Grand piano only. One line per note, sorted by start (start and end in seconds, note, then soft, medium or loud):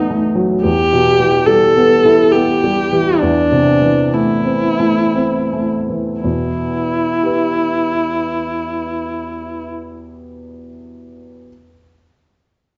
0.00 0.58 E2 soft
0.00 0.65 B2 soft
0.00 0.35 F#3 soft
0.00 0.10 A3 soft
0.00 0.65 B3 soft
0.10 0.52 A3 soft
0.35 0.62 F#3 soft
0.64 3.16 E2 soft
0.93 1.36 B2 soft
1.20 1.64 E3 soft
1.48 1.92 G3 soft
1.77 2.20 B3 soft
2.05 2.49 E4 soft
2.33 2.79 B3 soft
2.64 3.09 G3 soft
2.92 3.21 E3 soft
3.22 6.20 E2 soft
3.52 4.00 C3 soft
3.82 4.32 E3 soft
4.14 4.66 A3 soft
4.45 4.99 C4 soft
4.80 5.36 A3 soft
5.15 5.74 C4 soft
5.53 6.11 A3 soft
5.90 6.24 E3 soft
6.24 9.66 E2 soft
6.24 9.66 B2 soft
7.23 10.65 G4 soft
7.23 10.68 B4 soft
7.23 10.69 E5 soft